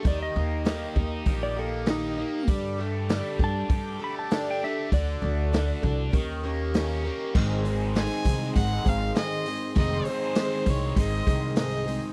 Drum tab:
CC |--------|--------|--------|x-------|
HH |o-o-o-o-|o-o-o-o-|o-o-o-o-|-ooooooo|
SD |--o---o-|--o---oo|--o---o-|--o---o-|
BD |o--oo---|o--oo---|o--oo---|o--ooo--|

CC |--------|
HH |oooooooo|
SD |--o---o-|
BD |o--ooo--|